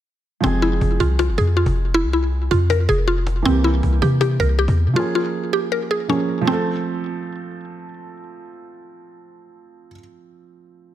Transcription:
0.40 808-style bass F1, felt piano F3 G#3, synth pluck C4, cajon bass
0.45 felt piano C4 G#4
0.62 synth pluck E4
0.81 808-style bass F1, cajon bass
1.00 808-style bass C2, synth pluck F4, cajon bass
1.19 synth pluck F4, cajon slap
1.28 808-style bass G1
1.38 808-style bass F2, synth pluck G#4, cajon bass
1.57 synth pluck F4, cajon slap
1.66 808-style bass F1, cajon bass
1.76 cajon slap
1.94 synth pluck E4, cajon slap
2.04 808-style bass C2
2.13 synth pluck E4
2.32 cajon slap
2.51 808-style bass F2, synth pluck F4, cajon bass, cajon slap
2.70 synth pluck A#4, cajon slap
2.89 808-style bass F1, synth pluck G#4, cajon bass
3.08 synth pluck F4, cajon slap
3.27 cajon slap
3.42 808-style bass C2, felt piano E3 A#3 C4, synth pluck C4, cajon bass
3.48 felt piano G4
3.64 synth pluck E4, cajon slap
3.83 808-style bass C2, cajon bass
4.02 808-style bass C3, synth pluck G4, cajon bass
4.21 synth pluck G4, cajon slap
4.40 808-style bass C2, synth pluck A#4, cajon bass
4.59 synth pluck G4, cajon slap
4.68 808-style bass E2, cajon bass
4.77 cajon slap
4.87 808-style bass C3
4.94 felt piano F3 A#3, synth pluck F4
4.98 felt piano C#4 G#4
5.15 synth pluck F4
5.53 synth pluck G4
5.72 synth pluck A#4
5.91 synth pluck G#4
6.08 felt piano F3 A#3 C#4 G#4, synth pluck C#4
6.41 felt piano F3 A3
6.47 synth pluck C4, felt piano C4
6.53 felt piano A4

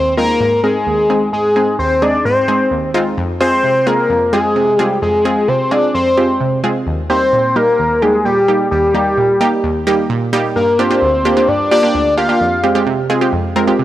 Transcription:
Already playing: synth pluck D#2, analog synth lead C5
0.17 synth pluck G#3 C4 D#4 F4, analog synth lead A#4
0.41 synth pluck G#2
0.64 synth pluck G#3 C4 D#4 A#4, analog synth lead G#4
0.87 synth pluck D#2
1.10 synth pluck G#3 C4 D#4 G#4
1.33 synth pluck G#2, analog synth lead G#4
1.56 synth pluck G#3 C4 D#4 G#4
1.79 synth pluck D#2, analog synth lead C5
2.02 synth pluck G#3 C4 D#4 G#4, analog synth lead D5
2.25 synth pluck G#2, analog synth lead C5
2.48 synth pluck G#3 C4 D#4 G#4
2.71 synth pluck D#2
2.94 synth pluck G#3 C4 D#4 F4
3.17 synth pluck F2
3.41 synth pluck G#3 C4 F4 G#4, analog synth lead C5
3.64 synth pluck C3
3.87 synth pluck G#3 C4 F4 G#4, analog synth lead A#4
4.10 synth pluck F2
4.33 synth pluck G#3 C4 F4 G#4, analog synth lead G#4
4.56 synth pluck C3
4.79 synth pluck G#3 C4 F4 G#4, analog synth lead G4
5.02 synth pluck F2, analog synth lead G#4
5.25 synth pluck G#3 C4 F4 G#4
5.48 synth pluck C3, analog synth lead C5
5.71 synth pluck G#3 C4 F4 G#4, analog synth lead D5
5.94 synth pluck F2, analog synth lead C5
6.17 synth pluck G#3 C4 F4 G4
6.41 synth pluck C3
6.64 synth pluck G#3 C4 F4 G#4
6.87 synth pluck D#2
7.10 synth pluck G3 A#3 D#4 G4, analog synth lead C5
7.33 synth pluck A#2
7.56 synth pluck G3 A#3 D#4 G4, analog synth lead A#4
7.79 synth pluck D#2
8.02 synth pluck G3 A#3 D#4 G4, analog synth lead G#4
8.25 synth pluck A#2, analog synth lead G4
8.48 synth pluck G3 A#3 D#4 G4
8.71 synth pluck D#2, analog synth lead G4
8.94 synth pluck G3 A#3 D#4 G4
9.18 synth pluck A#2
9.41 synth pluck G3 A#3 D#4 G4
9.64 synth pluck D#2
9.87 synth pluck G3 A#3 D#4 G4
10.10 synth pluck A#2
10.33 synth pluck G3 A#3 D#4 G4
10.56 synth pluck G2, analog synth lead A#4
10.79 synth pluck A#3 D4 F4 G4, analog synth lead C5
10.91 synth pluck A#3 D4 F4 G4
11.02 synth pluck D2
11.25 synth pluck A#3 D4 F4 G4
11.37 synth pluck A#3 D4 F4 G4
11.48 synth pluck G2, analog synth lead D5
11.71 synth pluck A#3 D4 F4 G4, analog synth lead D5
11.83 synth pluck A#3 D4 F4 G4
11.94 synth pluck D2
12.17 synth pluck A#3 D4 F4 G4, analog synth lead F5
12.29 synth pluck A#3 D4 F4 G4
12.41 synth pluck F2
12.64 synth pluck G#3 C4 F4 G4
12.75 synth pluck G#3 C4 F4 G4
12.87 synth pluck C3
13.10 synth pluck G#3 C4 F4 G#4
13.21 synth pluck G#3 C4 F4 G4
13.33 synth pluck F2
13.56 synth pluck G#3 C4 F4 A#4
13.67 synth pluck G#3 C4 F4 G4
13.79 synth pluck C3

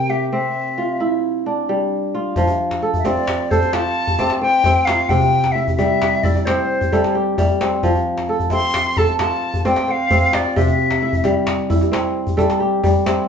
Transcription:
Already playing: kora C3 C4 A#4, flute G5
0.09 kora G4, flute E5
0.30 kora C4, flute E5
0.78 kora F4
1.00 kora E4
1.46 kora D4
1.69 kora G3
2.15 kora F4
2.36 kora F3, djembe slap, djembe bass
2.47 djembe tone
2.71 djembe slap
2.82 kora A4
2.94 djembe slap, djembe bass
2.98 flute E5
3.05 kora C4, flute D5, djembe tone
3.27 djembe slap
3.51 kora A4, flute C5, djembe bass
3.62 djembe tone
3.73 kora F4, flute A5, djembe slap
3.85 djembe slap
4.08 djembe bass
4.19 kora C4 D5, djembe tone
4.30 djembe slap
4.41 kora C5, flute G5
4.64 kora C4, djembe tone, djembe bass
4.85 kora F4, flute F5, djembe slap
4.99 djembe slap
5.09 kora C3, flute G5, djembe slap, djembe bass
5.21 djembe tone
5.44 djembe slap
5.52 kora E4, flute E5
5.68 djembe slap, djembe bass
5.75 kora G3, flute E5, djembe tone
6.02 djembe slap
6.23 kora E4, flute D5, djembe bass
6.35 djembe tone
6.45 kora C4, flute C5, djembe slap
6.58 djembe slap
6.81 djembe bass
6.92 kora G3 A4, djembe tone
7.04 djembe slap
7.15 kora G4
7.38 kora G3, djembe tone, djembe bass
7.61 kora C4, djembe slap
7.72 djembe slap
7.83 kora F3, djembe slap, djembe bass
7.95 djembe tone
8.18 djembe slap
8.29 kora A4
8.40 djembe slap, djembe bass
8.50 kora C4, flute C6, djembe tone
8.74 djembe slap
8.97 kora A4, flute A5, djembe bass
9.08 djembe tone
9.19 kora F4, flute A5, djembe slap
9.31 djembe slap
9.54 djembe bass
9.65 kora C4 D5, flute G5, djembe tone
9.76 djembe slap
9.88 kora C5, flute F5
10.11 kora C4, djembe tone, djembe bass
10.33 kora F4, flute D5, djembe slap
10.45 djembe slap
10.56 kora C3, flute E5, djembe bass
10.67 djembe tone
10.79 djembe slap
10.90 djembe slap
11.02 kora E4
11.13 djembe bass
11.24 kora G3, djembe tone
11.47 djembe slap
11.70 kora E4, djembe slap, djembe bass
11.81 djembe tone
11.92 kora C4, djembe slap
12.27 djembe bass
12.37 kora G3 A4, djembe slap, djembe tone
12.50 djembe slap
12.60 kora G4
12.83 kora G3, djembe tone, djembe bass
12.95 djembe slap
13.06 kora C4, djembe slap

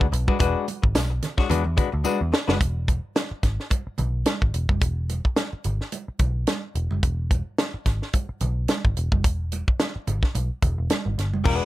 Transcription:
0.01 kick
0.12 picked electric bass B1, muted hollow-body jazz guitar stroke, closed hi-hat
0.28 hollow-body jazz guitar G#3 D4 F#4 B4, kick, high conga
0.39 picked electric bass E1, hollow-body jazz guitar G#3 D4 F#4 B4, kick, closed hi-hat
0.68 closed hi-hat, muted conga
0.82 picked electric bass G#1, muted hollow-body jazz guitar stroke, kick
0.95 picked electric bass B1, muted hollow-body jazz guitar stroke, snare, closed hi-hat, tambourine, high conga
1.10 muted hollow-body jazz guitar stroke
1.22 snare, closed hi-hat, low conga
1.38 hollow-body jazz guitar G#3 D4 F#4 C#5, kick, snare
1.49 picked electric bass E2, hollow-body jazz guitar G#3 D4 F#4 B4, closed hi-hat, muted conga, low conga
1.64 picked electric bass E2, muted hollow-body jazz guitar stroke
1.77 hollow-body jazz guitar G#3 D4 F#4 B4, kick, closed hi-hat, low conga
1.92 picked electric bass D2, muted hollow-body jazz guitar stroke
2.04 hollow-body jazz guitar G#3 D4 F#4 B4, tambourine, high conga
2.21 picked electric bass E2
2.32 muted hollow-body jazz guitar stroke, snare
2.47 picked electric bass F#1, hollow-body jazz guitar G#3 D4 F#4 B4, snare, high conga
2.61 picked electric bass E1, kick, closed hi-hat
2.88 kick, closed hi-hat, muted conga
3.16 snare, closed hi-hat, high conga
3.31 muted picked electric bass stroke
3.43 picked electric bass G#1, kick, snare, closed hi-hat
3.60 snare
3.70 kick, closed hi-hat, muted conga
3.87 muted picked electric bass stroke
3.98 picked electric bass B1, closed hi-hat, muted conga, low conga
4.26 snare, closed hi-hat, high conga
4.42 picked electric bass G#1, kick
4.54 picked electric bass E1, closed hi-hat
4.69 picked electric bass F#1, kick, high conga
4.82 picked electric bass E1, kick, closed hi-hat
5.09 closed hi-hat, muted conga
5.25 kick
5.36 snare, closed hi-hat, high conga
5.53 muted picked electric bass stroke
5.64 picked electric bass G#1, closed hi-hat, low conga
5.81 snare
5.92 closed hi-hat, muted conga
6.08 muted picked electric bass stroke
6.19 picked electric bass B1, kick, closed hi-hat, muted conga, low conga
6.47 snare, closed hi-hat, high conga
6.75 picked electric bass E1, closed hi-hat
6.91 picked electric bass F#1, high conga
7.03 picked electric bass E1, kick, closed hi-hat
7.31 kick, closed hi-hat, muted conga
7.58 snare, closed hi-hat, high conga
7.74 muted picked electric bass stroke
7.86 picked electric bass G#1, kick, snare, closed hi-hat
8.02 snare
8.13 kick, closed hi-hat, muted conga
8.29 muted picked electric bass stroke
8.40 picked electric bass B1, closed hi-hat, muted conga, low conga
8.68 snare, closed hi-hat, high conga
8.85 picked electric bass G#1, kick
8.97 picked electric bass E1, closed hi-hat
9.12 picked electric bass F#1, kick, high conga
9.24 picked electric bass E1, kick, closed hi-hat
9.52 closed hi-hat, muted conga
9.68 kick
9.80 snare, closed hi-hat, high conga
9.96 muted picked electric bass stroke
10.07 picked electric bass G#1, closed hi-hat, low conga
10.23 kick, snare
10.35 picked electric bass B1, closed hi-hat, muted conga
10.62 picked electric bass E1, kick, closed hi-hat, low conga
10.78 picked electric bass E1
10.90 snare, closed hi-hat, high conga
11.05 picked electric bass G#1, high conga
11.18 picked electric bass G1, snare, closed hi-hat
11.34 picked electric bass F#1, high conga
11.44 picked electric bass E1, hollow-body jazz guitar G3 C#4 F4 A#4, kick, crash
11.55 hollow-body jazz guitar G#3 D4 F#4 B4

